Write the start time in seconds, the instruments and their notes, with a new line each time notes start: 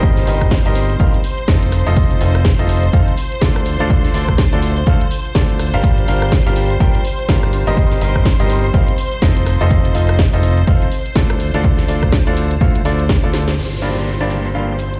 Already playing: fingered electric bass G1, upright piano G3 C4 D#4 G4 A#4 D#5, string machine C5 C6
0.03 kick, closed hi-hat
0.17 snare, closed hi-hat
0.27 fingered electric bass G1, upright piano G3 C4 D#4 G4 A#4 D#5, open hi-hat
0.41 kick, cross-stick, closed hi-hat
0.51 kick, snare, closed hi-hat
0.66 fingered electric bass G1, upright piano G3 C4 D#4 G4 A#4 D#5, closed hi-hat
0.75 open hi-hat
0.90 closed hi-hat
1.00 fingered electric bass G1, upright piano G3 C4 D#4 G4 A#4 F5, kick, closed hi-hat
1.14 closed hi-hat
1.24 open hi-hat
1.38 closed hi-hat
1.48 fingered electric bass F1, upright piano F3 C4 D#4 F4 A4 D#5, kick, snare, closed hi-hat
1.62 closed hi-hat
1.72 cross-stick, open hi-hat
1.86 fingered electric bass F1, upright piano F3 C4 D#4 F4 A4 D#5, closed hi-hat
1.96 kick, closed hi-hat
2.11 closed hi-hat
2.21 fingered electric bass F1, upright piano F3 C4 D#4 F4 A4 D#5, open hi-hat
2.35 cross-stick, closed hi-hat
2.45 kick, snare, closed hi-hat
2.59 fingered electric bass F1, upright piano F3 C4 D#4 F4 A4 D#5, closed hi-hat
2.69 open hi-hat
2.83 closed hi-hat
2.93 fingered electric bass F1, upright piano F3 C4 D#4 F4 A4 F5, kick, closed hi-hat
3.08 closed hi-hat
3.17 open hi-hat
3.32 closed hi-hat
3.42 fingered electric bass D2, upright piano D3 F4 A4 D5, kick, snare, closed hi-hat
3.56 cross-stick, closed hi-hat
3.66 open hi-hat
3.80 fingered electric bass D2, upright piano D3 F4 A4 D5, closed hi-hat
3.90 kick, closed hi-hat
4.04 snare, closed hi-hat
4.14 fingered electric bass D2, upright piano D3 F4 A4 D5, open hi-hat
4.28 kick, cross-stick, closed hi-hat
4.38 kick, snare, closed hi-hat
4.53 fingered electric bass D2, upright piano D3 F4 A4 D5, closed hi-hat
4.63 open hi-hat
4.77 closed hi-hat
4.87 fingered electric bass D2, upright piano D3 F4 A4 F5, kick, closed hi-hat
5.01 closed hi-hat
5.11 open hi-hat
5.25 closed hi-hat
5.35 fingered electric bass D2, upright piano D3 F4 A4 D5, kick, snare, closed hi-hat
5.49 closed hi-hat
5.59 cross-stick, open hi-hat
5.74 fingered electric bass G1, upright piano G3 D4 F4 G4 A#4 F5, closed hi-hat
5.84 kick, closed hi-hat
5.98 closed hi-hat
6.08 fingered electric bass G1, upright piano G3 D4 F4 G4 A#4 F5, open hi-hat
6.22 cross-stick, closed hi-hat
6.32 kick, snare, closed hi-hat
6.46 fingered electric bass G1, upright piano G3 D4 F4 G4 A#4 F5, closed hi-hat
6.56 open hi-hat
6.70 closed hi-hat
6.80 fingered electric bass G1, upright piano G3 D4 F4 G4 A#4 G5, kick, closed hi-hat
6.95 closed hi-hat
7.05 open hi-hat
7.19 closed hi-hat
7.29 fingered electric bass G1, upright piano G3 D4 F4 G4 A#4 F5, kick, snare, closed hi-hat
7.43 cross-stick, closed hi-hat
7.53 open hi-hat
7.67 fingered electric bass G1, upright piano G3 C4 D#4 G4 A#4 D#5, closed hi-hat
7.77 kick, closed hi-hat
7.91 snare, closed hi-hat
8.01 fingered electric bass G1, upright piano G3 C4 D#4 G4 A#4 D#5, open hi-hat
8.16 kick, cross-stick, closed hi-hat
8.25 kick, snare, closed hi-hat
8.40 fingered electric bass G1, upright piano G3 C4 D#4 G4 A#4 D#5, closed hi-hat
8.50 open hi-hat
8.64 closed hi-hat
8.74 fingered electric bass G1, upright piano G3 C4 D#4 G4 A#4 F5, kick, closed hi-hat
8.88 closed hi-hat
8.98 open hi-hat
9.12 closed hi-hat
9.22 fingered electric bass F1, upright piano F3 C4 D#4 F4 A4 D#5, kick, snare, closed hi-hat
9.36 closed hi-hat
9.46 cross-stick, open hi-hat
9.61 fingered electric bass F1, upright piano F3 C4 D#4 F4 A4 D#5, closed hi-hat
9.71 kick, closed hi-hat
9.85 closed hi-hat
9.95 fingered electric bass F1, upright piano F3 C4 D#4 F4 A4 D#5, open hi-hat
10.09 cross-stick, closed hi-hat
10.19 kick, snare, closed hi-hat
10.33 fingered electric bass F1, upright piano F3 C4 D#4 F4 A4 D#5, closed hi-hat
10.43 open hi-hat
10.57 closed hi-hat
10.67 fingered electric bass F1, upright piano F3 C4 D#4 F4 A4 F5, kick, closed hi-hat
10.82 closed hi-hat
10.92 open hi-hat
11.06 closed hi-hat
11.16 fingered electric bass D2, upright piano D3 F4 A4 D5, kick, snare, closed hi-hat
11.30 cross-stick, closed hi-hat
11.40 open hi-hat
11.54 fingered electric bass D2, upright piano D3 F4 A4 D5, closed hi-hat
11.64 kick, closed hi-hat
11.78 snare, closed hi-hat
11.88 fingered electric bass D2, upright piano D3 F4 A4 D5, open hi-hat
12.03 kick, cross-stick, closed hi-hat
12.12 kick, snare, closed hi-hat
12.27 fingered electric bass D2, upright piano D3 F4 A4 D5, closed hi-hat
12.37 open hi-hat
12.51 closed hi-hat
12.61 fingered electric bass D2, upright piano D3 F4 A4 F5, kick, closed hi-hat
12.75 closed hi-hat
12.85 fingered electric bass D2, upright piano D3 F4 A4 D5, open hi-hat
12.99 closed hi-hat
13.09 kick, snare, closed hi-hat
13.24 fingered electric bass D2, upright piano D3 F4 A4 D5, closed hi-hat
13.33 snare, open hi-hat
13.48 snare, closed hi-hat
13.58 fingered electric bass G1, string machine C5 C6, downlifter
13.82 upright piano G2 A#3 D4 F4 G4 D5, open hi-hat, shaker
13.96 shaker
14.20 upright piano G2 A#3 D4 F4 G4 D5
14.30 open hi-hat, shaker
14.45 shaker
14.55 upright piano G2 A#3 D4 F4 G4 F5, shaker
14.79 open hi-hat, shaker
14.93 shaker